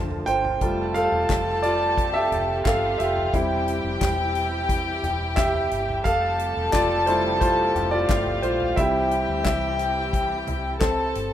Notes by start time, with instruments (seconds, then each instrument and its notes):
Already playing: fingered electric bass F1, string section D3 F3 F4 A5, grand piano F3 A3 D4 A#4 C5 G5 A5
0.10 floor tom
0.26 fingered electric bass G1, grand piano C5 G5, closed hi-hat
0.44 floor tom
0.61 fingered electric bass F1, string section C3 G3 G4, grand piano G3 A3 F4, violin section A4 A5, kick, closed hi-hat
0.94 grand piano A4 F5, closed hi-hat
1.12 fingered electric bass E1
1.29 fingered electric bass F1, kick, snare, clap, closed hi-hat
1.62 grand piano F4 D5, closed hi-hat
1.98 kick, closed hi-hat
2.14 grand piano G4 E5
2.32 fingered electric bass F1, closed hi-hat, floor tom
2.64 fingered electric bass G1, violin section F4 F5, grand piano A4 F5, kick, snare, clap, closed hi-hat
2.98 fingered electric bass F1, grand piano G4 E5, closed hi-hat
3.17 floor tom
3.33 fingered electric bass E1, string section E3 E4 G4, grand piano G3 C4 E4, violin section G4 G5, kick, closed hi-hat
3.68 closed hi-hat
3.84 fingered electric bass F1
4.01 fingered electric bass E1, kick, snare, clap, closed hi-hat
4.35 closed hi-hat
4.69 kick, closed hi-hat
5.03 fingered electric bass E1, closed hi-hat, floor tom
5.36 grand piano G4 E5, kick, snare, clap, closed hi-hat
5.54 floor tom
5.71 fingered electric bass G1, closed hi-hat
5.89 floor tom
6.04 fingered electric bass F1, string section C3 F3 A3, violin section A4 A5, grand piano A4 F5, kick, closed hi-hat
6.39 closed hi-hat
6.57 fingered electric bass E1
6.72 fingered electric bass F1, grand piano F4 D5, kick, snare, clap, closed hi-hat
7.06 grand piano G3 A3 E4 F4 C5, closed hi-hat
7.40 grand piano F4 C5, kick, closed hi-hat
7.75 fingered electric bass F1, closed hi-hat, floor tom
7.91 grand piano F4 D5
8.09 fingered electric bass G1, violin section F4 F5, kick, snare, clap, closed hi-hat
8.26 floor tom
8.42 fingered electric bass A#1, grand piano F4 C5, closed hi-hat
8.60 floor tom
8.76 fingered electric bass C2, string section C3 E3 E4, grand piano G3 C4 E4 G4 E5, violin section G4 G5, kick, closed hi-hat
9.11 closed hi-hat
9.29 fingered electric bass D2
9.44 fingered electric bass C2, grand piano G4 E5, kick, snare, clap, closed hi-hat
9.79 closed hi-hat
10.13 kick, closed hi-hat
10.47 fingered electric bass C2, closed hi-hat, floor tom
10.79 grand piano C4 A4, violin section A4 A5, kick, snare, clap, closed hi-hat
11.15 fingered electric bass G1, closed hi-hat